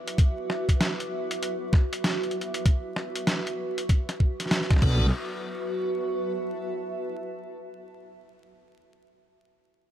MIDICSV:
0, 0, Header, 1, 5, 480
1, 0, Start_track
1, 0, Key_signature, 2, "minor"
1, 0, Tempo, 618557
1, 142, Time_signature, 4, 2, 24, 8
1, 7691, End_track
2, 0, Start_track
2, 0, Title_t, "Ambient pad"
2, 0, Program_c, 0, 92
2, 0, Note_on_c, 0, 66, 88
2, 0, Note_on_c, 0, 71, 78
2, 0, Note_on_c, 0, 76, 94
2, 0, Note_on_c, 0, 86, 80
2, 3732, Note_off_c, 0, 66, 0
2, 3738, Note_off_c, 0, 86, 0
2, 3741, Note_on_c, 0, 66, 78
2, 3744, Note_off_c, 0, 76, 0
2, 3745, Note_off_c, 0, 71, 0
2, 3830, Note_on_c, 0, 71, 78
2, 4146, Note_on_c, 0, 76, 81
2, 4198, Note_on_c, 0, 81, 82
2, 5629, Note_off_c, 0, 71, 0
2, 5630, Note_off_c, 0, 66, 0
2, 5868, Note_off_c, 0, 76, 0
2, 5868, Note_off_c, 0, 81, 0
2, 7691, End_track
3, 0, Start_track
3, 0, Title_t, "Tonewheel organ"
3, 0, Program_c, 1, 16
3, 3743, Note_on_c, 1, 59, 84
3, 3744, Note_on_c, 1, 62, 79
3, 3744, Note_on_c, 1, 69, 92
3, 3745, Note_on_c, 1, 66, 75
3, 3933, Note_off_c, 1, 59, 0
3, 3933, Note_off_c, 1, 62, 0
3, 3933, Note_off_c, 1, 66, 0
3, 3933, Note_off_c, 1, 69, 0
3, 7691, End_track
4, 0, Start_track
4, 0, Title_t, "Wobble bass"
4, 0, Program_c, 2, 39
4, 3740, Note_on_c, 2, 35, 101
4, 3964, Note_off_c, 2, 35, 0
4, 7691, End_track
5, 0, Start_track
5, 0, Title_t, "Drums"
5, 58, Note_on_c, 9, 42, 50
5, 136, Note_off_c, 9, 42, 0
5, 142, Note_on_c, 9, 36, 111
5, 147, Note_on_c, 9, 42, 66
5, 220, Note_off_c, 9, 36, 0
5, 225, Note_off_c, 9, 42, 0
5, 386, Note_on_c, 9, 40, 53
5, 464, Note_off_c, 9, 40, 0
5, 533, Note_on_c, 9, 36, 57
5, 537, Note_on_c, 9, 42, 51
5, 611, Note_off_c, 9, 36, 0
5, 614, Note_off_c, 9, 42, 0
5, 626, Note_on_c, 9, 38, 114
5, 626, Note_on_c, 9, 42, 67
5, 703, Note_off_c, 9, 38, 0
5, 703, Note_off_c, 9, 42, 0
5, 777, Note_on_c, 9, 42, 35
5, 855, Note_off_c, 9, 42, 0
5, 1016, Note_on_c, 9, 42, 47
5, 1094, Note_off_c, 9, 42, 0
5, 1106, Note_on_c, 9, 42, 61
5, 1184, Note_off_c, 9, 42, 0
5, 1341, Note_on_c, 9, 36, 101
5, 1347, Note_on_c, 9, 40, 41
5, 1419, Note_off_c, 9, 36, 0
5, 1424, Note_off_c, 9, 40, 0
5, 1495, Note_on_c, 9, 42, 49
5, 1573, Note_off_c, 9, 42, 0
5, 1584, Note_on_c, 9, 38, 110
5, 1584, Note_on_c, 9, 42, 60
5, 1662, Note_off_c, 9, 38, 0
5, 1662, Note_off_c, 9, 42, 0
5, 1734, Note_on_c, 9, 42, 17
5, 1794, Note_off_c, 9, 42, 0
5, 1794, Note_on_c, 9, 42, 22
5, 1871, Note_off_c, 9, 42, 0
5, 1873, Note_on_c, 9, 42, 29
5, 1950, Note_off_c, 9, 42, 0
5, 1973, Note_on_c, 9, 42, 51
5, 2051, Note_off_c, 9, 42, 0
5, 2061, Note_on_c, 9, 36, 110
5, 2061, Note_on_c, 9, 42, 64
5, 2139, Note_off_c, 9, 36, 0
5, 2139, Note_off_c, 9, 42, 0
5, 2300, Note_on_c, 9, 40, 55
5, 2378, Note_off_c, 9, 40, 0
5, 2449, Note_on_c, 9, 42, 52
5, 2526, Note_off_c, 9, 42, 0
5, 2539, Note_on_c, 9, 38, 114
5, 2539, Note_on_c, 9, 42, 70
5, 2616, Note_off_c, 9, 38, 0
5, 2616, Note_off_c, 9, 42, 0
5, 2692, Note_on_c, 9, 42, 38
5, 2769, Note_off_c, 9, 42, 0
5, 2932, Note_on_c, 9, 42, 50
5, 3010, Note_off_c, 9, 42, 0
5, 3021, Note_on_c, 9, 36, 100
5, 3023, Note_on_c, 9, 42, 64
5, 3098, Note_off_c, 9, 36, 0
5, 3100, Note_off_c, 9, 42, 0
5, 3173, Note_on_c, 9, 40, 43
5, 3173, Note_on_c, 9, 42, 38
5, 3250, Note_off_c, 9, 40, 0
5, 3250, Note_off_c, 9, 42, 0
5, 3260, Note_on_c, 9, 36, 60
5, 3338, Note_off_c, 9, 36, 0
5, 3414, Note_on_c, 9, 38, 15
5, 3414, Note_on_c, 9, 42, 54
5, 3459, Note_off_c, 9, 38, 0
5, 3459, Note_on_c, 9, 38, 19
5, 3491, Note_off_c, 9, 42, 0
5, 3501, Note_off_c, 9, 38, 0
5, 3501, Note_on_c, 9, 38, 111
5, 3501, Note_on_c, 9, 42, 63
5, 3577, Note_off_c, 9, 38, 0
5, 3577, Note_on_c, 9, 38, 27
5, 3579, Note_off_c, 9, 42, 0
5, 3651, Note_on_c, 9, 40, 53
5, 3651, Note_on_c, 9, 42, 37
5, 3652, Note_on_c, 9, 36, 103
5, 3654, Note_off_c, 9, 38, 0
5, 3674, Note_off_c, 9, 40, 0
5, 3674, Note_on_c, 9, 40, 43
5, 3697, Note_off_c, 9, 40, 0
5, 3697, Note_on_c, 9, 40, 36
5, 3718, Note_off_c, 9, 40, 0
5, 3718, Note_on_c, 9, 40, 28
5, 3729, Note_off_c, 9, 36, 0
5, 3729, Note_off_c, 9, 42, 0
5, 3740, Note_on_c, 9, 36, 111
5, 3741, Note_on_c, 9, 49, 88
5, 3795, Note_off_c, 9, 40, 0
5, 3818, Note_off_c, 9, 36, 0
5, 3818, Note_off_c, 9, 49, 0
5, 7691, End_track
0, 0, End_of_file